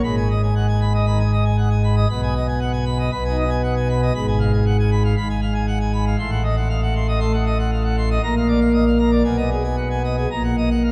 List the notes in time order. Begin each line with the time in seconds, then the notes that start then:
0.04 G#1 G#2 B5
0.17 G#5
0.30 D#5
0.43 G#5
0.56 F#5
0.68 G#5
0.81 B5
0.94 D#5
1.06 D#3 B5
1.20 G#5
1.33 D#5
1.45 G#5
1.58 F#5
1.70 G#5
1.84 B5
1.97 D#5
2.09 B1 B2 B5
2.23 G#5
2.35 D#5
2.48 G#5
2.61 F#5
2.73 G#5
2.86 B5
2.99 D#5
3.12 B1 B2 B5
3.24 D#4 G#5
3.38 D#5
3.50 G#5
3.63 F#5
3.77 G#5
3.89 B5
4.02 D#5
4.15 G#1 G#2 B5
4.28 G#5
4.40 F5
4.53 G#5
4.66 F#5
4.79 G#5
4.92 B5
5.04 F5
5.17 G#1 G#2 B5
5.30 G#5
5.42 F5
5.55 G#5
5.68 F#5
5.81 G#5
5.93 B5
6.07 F5
6.18 A1 A2 C6
6.31 F#5
6.44 D#5
6.57 F#5
6.70 F5
6.83 F#5
6.95 C6
7.08 D#5
7.20 A3 C6
7.33 F#5
7.46 D#5
7.59 F#5
7.72 F5
7.84 F#5
7.98 C6
8.11 D#5
8.23 A#1 A#2 A#5
8.36 F5
8.48 D5
8.61 F5
8.73 D#5
8.86 F5
8.99 A#5
9.11 D5
9.24 B1 B2 G#5
9.38 D#5
9.51 G#4
9.64 G#5
9.77 F#5
9.91 G#5
10.04 D#5
10.18 G#4
10.31 A#1 A#2 A#5
10.44 F#5
10.58 D#5
10.71 F#5
10.84 F5